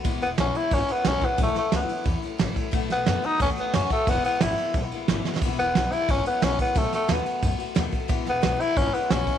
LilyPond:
<<
  \new Staff \with { instrumentName = "Tenor saxophone" } { \time 4/4 \key e \major \tempo 4 = 179 r8 b8 cis'8 e'8 cis'8 b8 cis'8 b8 | a8 a8 b4 r2 | r8 b4 dis'8 cis'8 b8 cis'8 a8 | b8 b8 e'4 r2 |
r8 b4 e'8 cis'8 b8 cis'8 b8 | a8 a8 b4 r2 | r8 b4 e'8 cis'8 b8 cis'4 | }
  \new Staff \with { instrumentName = "Steel-string acoustic guitar" } { \time 4/4 \key e \major <e, b, e gis b e'>8 <e gis b e'>8 <e, b, e gis b e'>8 <e gis b e'>8 <e gis b e'>8 <e gis b e'>8 <e, b, e gis b e'>8 <e gis b e'>8 | <a, e a cis' e'>8 <a cis' e'>8 <a, e a cis' e'>8 <a cis' e'>8 <e a cis' e'>8 <a cis' e'>8 <a, e a cis' e'>8 <a cis' e'>8 | <b, dis a b fis'>8 <a b fis'>8 <b, dis a b fis'>8 <a b fis'>8 <dis a b fis'>8 <a b fis'>8 <b, dis a b fis'>8 <a b fis'>8 | <e, b, e gis b e'>8 <e gis b e'>8 <e, b, e gis b e'>8 <e gis b e'>8 <e gis b e'>8 <e gis b e'>8 <e, b, e gis b e'>8 <e gis b e'>8 |
<e, b, e gis b e'>8 <e gis b e'>8 <e, b, e gis b e'>8 <e gis b e'>8 <e gis b e'>8 <e gis b e'>8 <e, b, e gis b e'>8 <e gis b e'>8 | <b, dis a b fis'>8 <a b fis'>8 <b, dis a b fis'>8 <a b fis'>8 <dis a b fis'>8 <a b fis'>8 <b, dis a b fis'>8 <a b fis'>8 | <e, b, e gis b e'>8 <e gis b e'>8 <e, b, e gis b e'>8 <e gis b e'>8 <e gis b e'>8 <e gis b e'>8 <e, b, e gis b e'>8 <e gis b e'>8 | }
  \new Staff \with { instrumentName = "Upright bass" } { \clef bass \time 4/4 \key e \major e,,8 e,,8 b,,8 r8 gis,,8 r8 b,,8 r8 | a,,8 r8 cis,8 r8 e,8 r8 a,,8 r8 | b,,8 b,,8 fis,8 r8 dis,8 r8 fis,8 r8 | e,,8 r8 gis,,8 r8 b,,8 r8 gis,,8 r8 |
e,,8 e,,8 b,,8 r8 gis,,8 r8 b,,8 r8 | b,,8 r8 dis,8 r8 fis,8 r8 dis,8 r8 | e,,8 e,,8 b,,8 r8 gis,,8 r8 b,,8 r8 | }
  \new DrumStaff \with { instrumentName = "Drums" } \drummode { \time 4/4 <bd cymr>8 cymr8 <cymr sn>8 cymr8 <bd cymr>8 cymr8 <cymr sn>8 <bd cymr>8 | <bd cymr>8 <cymr sn>8 <cymr sn>8 cymr8 <bd cymr>8 cymr8 <cymr sn>8 <bd cymr>8 | <bd cymr>8 <cymr sn>8 <cymr sn>8 cymr8 <bd cymr>8 cymr8 <cymr sn>8 <bd cymr>8 | <bd cymr>8 cymr8 <cymr sn>8 cymr8 <bd cymr>8 cymr8 \tuplet 3/2 { <cymr sn>16 r16 r16 sn16 r16 sn16 } |
<bd cymr>8 <cymr sn>8 <cymr sn>8 cymr8 <bd cymr>8 cymr8 <cymr sn>8 <bd cymr>8 | <bd cymr>8 <cymr sn>8 <cymr sn>8 cymr8 <bd cymr>8 cymr8 <cymr sn>8 <bd cymr>8 | <bd cymr>8 <cymr sn>8 <cymr sn>8 cymr8 <bd cymr>8 cymr8 <cymr sn>8 <bd cymr>8 | }
>>